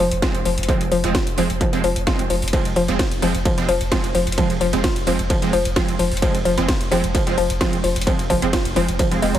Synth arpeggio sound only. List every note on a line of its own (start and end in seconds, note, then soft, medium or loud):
0.22 0.27 F4 medium
0.45 0.50 F3 medium
0.68 0.76 F3 loud
0.92 0.96 F3 loud
1.15 1.19 F4 medium
1.38 1.42 F3 medium
1.61 1.68 F3 loud
1.84 1.88 F3 loud
2.07 2.11 F4 medium
2.30 2.34 F3 medium
2.53 2.60 F3 loud
2.76 2.81 F3 loud
2.99 3.04 F4 medium
3.22 3.27 F3 medium
3.45 3.53 F3 loud
3.69 3.73 F3 loud
3.92 3.96 F4 medium
4.15 4.19 F3 medium
4.38 4.45 F3 loud
4.61 4.65 F3 loud
4.84 4.88 F4 medium
5.07 5.11 F3 medium
5.30 5.37 F3 loud
5.53 5.58 F3 loud
5.76 5.81 F4 medium
5.99 6.04 F3 medium
6.22 6.30 F3 loud
6.45 6.50 F3 loud
6.68 6.73 F4 medium
6.92 6.96 F3 medium
7.15 7.22 F3 loud
7.38 7.42 F3 loud
7.61 7.65 F4 medium
7.84 7.88 F3 medium
8.07 8.14 F3 loud
8.30 8.34 F3 loud
8.53 8.58 F4 medium
8.76 8.81 F3 medium
8.99 9.07 F3 loud
9.22 9.33 G#3 medium
9.35 9.39 F#3 medium